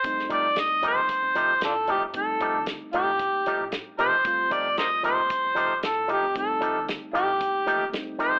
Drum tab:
HH |x-x-x-x-x-x-x-x-|x-x-x-x-x-x-x-x-|x-x-x-x-x-x-x-x-|x-x-x-x-x-x-x-x-|
SD |-o--o-------o---|----o-------o---|----o-------o---|----o-------o---|
BD |o-o-----o-------|o-o-----o-------|o-o-----o-------|o-o-----o-------|